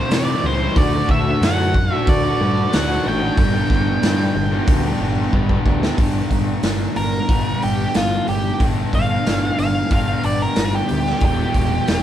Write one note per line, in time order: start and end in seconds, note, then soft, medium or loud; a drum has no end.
0.00 0.11 G3 medium
0.00 0.12 C4 medium
0.00 0.12 E4 medium
0.00 0.13 C5 medium
0.09 0.33 C3 medium
0.09 0.59 C3 medium
0.09 0.42 E3 medium
0.09 0.30 G3 loud
0.09 0.28 C4 loud
0.09 snare loud
0.09 open hi-hat medium
0.13 0.26 E4 loud
0.13 0.45 D5 medium
0.27 0.43 G3 medium
0.27 0.44 C4 medium
0.27 0.45 E4 medium
0.43 0.67 C#2 loud
0.43 0.73 E3 medium
0.43 0.63 G3 medium
0.43 0.62 C4 medium
0.43 0.59 E4 medium
0.43 0.78 C5 medium
0.60 0.76 G3 medium
0.60 0.75 C4 medium
0.60 0.74 E4 medium
0.76 1.00 D2 loud
0.76 1.24 D3 medium
0.76 0.94 A3 medium
0.76 0.93 D4 loud
0.76 0.91 F#4 loud
0.76 1.10 D5 medium
0.76 kick loud
0.76 open hi-hat medium
0.92 1.42 A3 medium
0.92 1.43 D4 medium
0.92 1.43 F#4 medium
1.09 1.33 D2 medium
1.09 1.43 E5 medium
1.09 kick medium
1.41 1.89 F#2 loud
1.41 1.73 D3 medium
1.41 1.60 A3 medium
1.41 1.60 D4 loud
1.41 1.57 F#4 loud
1.41 1.94 F#5 medium
1.41 snare loud
1.41 open hi-hat medium
1.58 1.74 A3 medium
1.58 1.75 D4 medium
1.58 1.74 F#4 medium
1.74 muted overdriven electric guitar stroke soft
1.74 kick medium
1.90 2.25 A3 medium
1.90 2.24 D4 medium
1.90 2.22 F#4 medium
1.90 2.10 E5 medium
2.07 2.31 D2 loud
2.07 2.75 D5 medium
2.07 kick loud
2.07 open hi-hat medium
2.23 2.40 A3 medium
2.23 2.41 D4 medium
2.23 2.41 F#4 medium
2.39 2.64 G2 medium
2.39 2.69 D3 medium
2.39 2.70 A3 medium
2.39 2.72 D4 medium
2.39 2.72 F#4 medium
2.70 2.97 D2 medium
2.70 3.03 D3 medium
2.70 2.89 A3 loud
2.70 2.88 D4 loud
2.70 2.86 F#4 medium
2.70 snare loud
2.70 open hi-hat medium
2.75 3.07 F#5 medium
2.88 3.03 A3 medium
2.88 3.06 D4 medium
2.88 3.06 F#4 medium
3.04 3.30 A1 medium
3.04 3.35 D3 medium
3.04 3.22 A3 medium
3.04 3.22 D4 medium
3.04 3.19 F#4 medium
3.08 5.31 G5 medium
3.21 3.36 A3 medium
3.21 3.39 D4 medium
3.21 3.35 F#4 medium
3.37 3.62 G1 loud
3.37 3.86 G2 medium
3.37 3.87 D3 medium
3.37 3.55 G3 medium
3.37 3.54 B3 loud
3.37 3.54 D4 medium
3.37 3.53 G4 loud
3.37 kick loud
3.37 open hi-hat medium
3.54 4.02 G3 medium
3.54 4.03 B3 medium
3.54 4.04 D4 medium
3.54 4.04 G4 medium
3.70 3.94 G1 medium
3.70 kick medium
3.70 snare soft
4.02 4.51 G2 medium
4.02 4.27 G2 medium
4.02 4.52 D3 loud
4.02 4.19 G3 medium
4.02 4.19 B3 loud
4.02 4.18 D4 loud
4.02 4.16 G4 loud
4.02 snare loud
4.02 open hi-hat medium
4.18 4.33 G3 medium
4.18 4.33 B3 medium
4.18 4.33 D4 medium
4.18 4.34 G4 medium
4.34 4.60 G1 loud
4.34 muted overdriven electric guitar stroke soft
4.51 4.85 G3 medium
4.51 4.84 B3 medium
4.51 4.84 D4 medium
4.51 4.82 G4 medium
4.67 4.92 D2 medium
4.67 kick loud
4.67 open hi-hat medium
4.83 4.98 G3 medium
4.83 4.99 B3 medium
4.83 5.00 D4 medium
4.83 5.00 G4 medium
4.99 5.25 G1 medium
4.99 5.32 G3 medium
4.99 5.33 B3 medium
4.99 5.33 D4 medium
4.99 5.34 G4 medium
5.32 5.82 G2 medium
5.32 5.57 G2 medium
5.32 5.82 D3 loud
5.32 5.50 G3 medium
5.32 5.50 B3 medium
5.32 5.49 D4 medium
5.32 5.48 G4 loud
5.32 kick medium
5.49 5.65 G3 medium
5.49 5.66 B3 medium
5.49 5.67 D4 medium
5.49 5.68 G4 medium
5.49 kick medium
5.65 5.90 D2 medium
5.65 5.84 G3 medium
5.65 5.83 B3 medium
5.65 5.82 D4 medium
5.65 5.80 G4 medium
5.65 kick medium
5.82 5.98 G3 medium
5.82 5.98 B3 medium
5.82 5.97 D4 medium
5.82 5.97 G4 medium
5.82 snare medium
5.98 6.21 G1 medium
5.98 7.27 G2 medium
5.98 7.27 D3 medium
5.98 7.29 G3 medium
5.98 7.29 B3 medium
5.98 7.30 D4 medium
5.98 7.30 G4 medium
5.98 kick loud
5.98 open hi-hat medium
6.31 6.54 G1 medium
6.31 kick medium
6.31 open hi-hat medium
6.63 6.86 G1 medium
6.63 snare loud
6.63 open hi-hat medium
6.96 7.19 G1 medium
6.96 7.61 A#4 medium
6.96 open hi-hat medium
7.27 7.52 G1 medium
7.27 8.58 G2 medium
7.27 8.58 D3 medium
7.27 8.60 G3 medium
7.27 8.61 B3 medium
7.27 8.59 D4 medium
7.27 8.62 G4 medium
7.27 kick loud
7.27 open hi-hat medium
7.62 7.85 G1 medium
7.62 7.95 G4 medium
7.62 open hi-hat medium
7.94 8.18 G1 medium
7.94 8.28 F4 medium
7.94 snare loud
7.94 open hi-hat medium
8.28 8.51 G1 medium
8.28 8.60 G4 medium
8.28 open hi-hat medium
8.59 8.83 G1 medium
8.59 9.89 G2 medium
8.59 9.89 D3 medium
8.59 9.92 G3 medium
8.59 9.92 B3 medium
8.59 9.90 D4 medium
8.59 9.93 G4 loud
8.59 kick loud
8.59 open hi-hat medium
8.93 9.16 G1 medium
8.93 9.58 F5 medium
8.93 kick medium
8.93 open hi-hat medium
9.26 9.49 G1 medium
9.26 snare loud
9.26 open hi-hat medium
9.58 9.81 G1 medium
9.58 9.91 F5 medium
9.58 open hi-hat medium
9.90 10.14 G1 medium
9.90 11.19 G2 medium
9.90 11.20 D3 medium
9.90 11.22 G3 medium
9.90 11.22 B3 medium
9.90 11.21 D4 medium
9.90 11.23 G4 medium
9.90 10.24 F5 medium
9.90 kick loud
9.90 open hi-hat medium
10.23 10.46 G1 medium
10.23 10.41 D5 medium
10.23 open hi-hat medium
10.42 10.73 A#4 medium
10.56 10.79 G1 medium
10.56 snare loud
10.56 open hi-hat medium
10.75 11.21 G4 medium
10.89 11.13 D2 medium
10.89 open hi-hat medium
11.06 snare soft
11.20 11.44 E1 medium
11.20 12.03 E2 medium
11.20 12.03 B2 medium
11.20 12.03 E3 medium
11.20 12.03 G3 medium
11.20 12.03 E4 loud
11.20 12.03 G4 medium
11.20 kick loud
11.20 open hi-hat medium
11.25 12.03 G4 medium
11.54 11.77 E1 medium
11.54 kick medium
11.54 open hi-hat medium
11.88 12.03 E1 medium
11.88 snare loud
11.88 open hi-hat medium